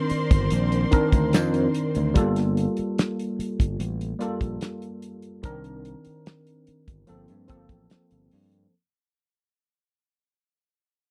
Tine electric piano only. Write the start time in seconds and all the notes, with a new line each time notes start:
Already playing: D#3 C4 D4 A#4
0.91 D#3 C4 D4 A#4
2.14 G3 A#3 F4 A4
4.19 G3 A#3 F4 A4
5.43 D#3 C4 D4 A#4
7.07 F3 A#3 C4 A4
7.47 F3 A#3 C4 A4